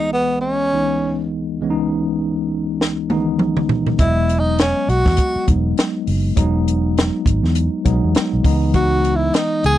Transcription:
Already playing: C#2 E3 G#3 B3 G#4 D#5
0.13 B3
0.41 C#4
0.72 C#2 E3 G#3 B3 D#4
1.61 C#2 E3 G#3 B3 C#4
1.70 D#4
2.81 snare
3.09 C#2 D#3 G#3 B3 D#4, high tom
3.16 E3
3.39 mid tom
3.57 mid tom
3.69 floor tom
3.87 floor tom
3.99 E1 F#3 G#3 B3 E4 D#5, kick, closed hi-hat
4.29 closed hi-hat
4.39 D#4
4.59 C#4, snare, closed hi-hat
4.89 B1 F#4, closed hi-hat
5.06 E2, kick, snare
5.17 kick, closed hi-hat
5.36 muted fingered electric bass stroke
5.46 E1 F#3 G#3 B3 D#4, kick, closed hi-hat
5.78 snare, closed hi-hat
6.07 F#1, open hi-hat
6.36 E1 F#3 G#3 B3 D#4, kick, closed hi-hat
6.68 closed hi-hat
6.98 snare, closed hi-hat
7.26 G#1, kick, closed hi-hat
7.43 E2, snare
7.55 closed hi-hat
7.84 B1 F#3 G#3 B3 D#4, kick, closed hi-hat
8.04 E2
8.15 muted fingered electric bass stroke, snare, closed hi-hat
8.33 B1
8.43 C#2 E3 G#3 B3 D#4, kick, open hi-hat
8.74 F#4, kick, closed hi-hat
9.05 closed hi-hat
9.15 E4
9.34 D#4, snare, closed hi-hat
9.64 C#2 G#4, closed hi-hat

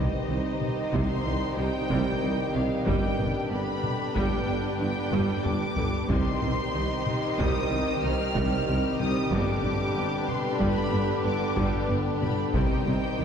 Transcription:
Already playing: D#3 G3 C4 D#4 G4 C5 D#5
0.28 C2 C3 D#3
0.61 taiko mid
0.92 C2 C3 G3 C6, taiko
1.25 C2 C3 D#3 G3
1.57 C2 C3 D#3 G3 G5
1.90 C2 C3 G3, taiko
2.22 C2 C3 D#3 G3
2.54 C2 C3 D#3 F5, taiko mid
2.86 G1 G2 G3 B3 D4 B4 D5 G5, taiko
3.19 G1 G2 G3 D4, taiko mid
3.50 G1 G2 D3 B3 B5
3.83 taiko mid
4.16 G1 G2 G3 G5, taiko
4.48 G1 G2 G3 B3
4.80 G1 G2 D3 D4 G5
5.12 G1 G2 G3, taiko low-mid
5.44 G1 G2 G3 B3 D6, taiko low-mid
5.77 G1 G2 D3 B3, taiko low
6.09 C2 C3 D#3 G3 C4 D#4 G4 C5 D#5 C6, taiko
6.42 C2 C3 G3, taiko mid
6.74 C2 C3 D#3
7.06 taiko mid
7.38 C2 C3 G3 D#6, taiko
7.71 C2 C3 D#3 G3
8.02 C2 C3 D#3 G3 F6
8.34 C2 C3 G3, taiko
8.67 C2 C3 D#3 G3
8.99 C2 C3 D#3 D#6, taiko mid
9.31 G1 G2 D3 G3 B3 D4 B4 D5 D6, taiko
9.63 G1 G2 G3 D4, taiko mid
9.96 G1 G2 D3 B3
10.28 C6, taiko mid
10.60 G1 G2 G3 B5, taiko
10.92 G1 G2 G3 B3
11.25 G1 G2 D3 D4 D6
11.57 G1 G2 G3, taiko
11.89 G1 G2 G3 B3
12.21 G1 G2 D3 B3 B5, taiko mid
12.53 C2 C3 D#3 G3 C4 D#4 G4 C5 D#5 G5, taiko
12.86 C2 C3 G3, taiko mid
13.18 C2 C3 D#3

